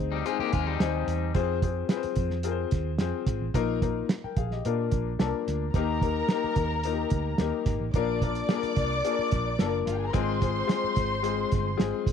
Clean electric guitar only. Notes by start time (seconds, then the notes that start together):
0.12 G3 D#4
0.26 G#3 F4
0.40 A#3 G4
0.53 G#3 F4
0.67 G3 D#4